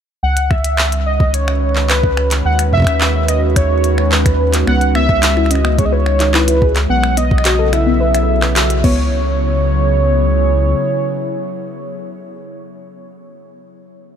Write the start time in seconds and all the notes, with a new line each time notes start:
0.23 C#2 D#3 F#5
0.34 G#3, closed hi-hat
0.51 E5, finger snap, kick
0.64 closed hi-hat
0.69 C#4 B4
0.78 finger snap, clap
0.92 closed hi-hat
1.06 F#4 D#5
1.20 kick
1.34 C#5, closed hi-hat
1.48 finger snap
1.76 clap
1.90 B4, finger snap, clap, closed hi-hat
2.03 kick
2.17 finger snap
2.31 clap, closed hi-hat
2.45 D#2 F#5
2.59 finger snap, closed hi-hat
2.73 E5, kick
2.75 kick
2.78 kick
2.80 kick
2.82 kick
2.84 finger snap, kick, closed hi-hat
3.01 clap
3.28 D#5, finger snap, closed hi-hat
3.56 C#5, finger snap, kick, closed hi-hat
3.84 closed hi-hat
3.98 finger snap
4.12 B4, clap
4.26 finger snap, kick, closed hi-hat
4.54 clap, closed hi-hat
4.67 C#2 B3 F#5, finger snap
4.81 closed hi-hat
4.95 B3 E5, finger snap
5.09 kick
5.23 D#4, clap, closed hi-hat
5.37 E4, finger snap
5.46 finger snap
5.51 C#4 D#5, closed hi-hat
5.55 finger snap
5.65 B3, finger snap
5.78 G#4 C#5, kick, closed hi-hat
5.85 D#5
5.92 B4 C#5
6.06 finger snap
6.20 D#4, clap, closed hi-hat
6.34 E4 B4, finger snap, clap
6.48 E4, closed hi-hat
6.62 G#4, kick
6.76 finger snap, clap, closed hi-hat
6.89 B1 C#3 B3 F#5
6.96 B3
7.03 finger snap
7.10 F#3
7.17 B3 D#5, closed hi-hat
7.23 E4
7.31 kick
7.38 finger snap
7.45 F#4, clap, closed hi-hat
7.59 A4
7.73 E4 E5, finger snap, closed hi-hat
7.87 B3
8.01 B4
8.14 E5, finger snap, closed hi-hat
8.42 B4, finger snap, clap
8.56 F#4, clap, closed hi-hat
8.70 F#4, closed hi-hat
8.84 C#2 C#3 B3 C#5, kick, crash
8.92 F#3
9.29 B3
9.37 E4
9.45 G#4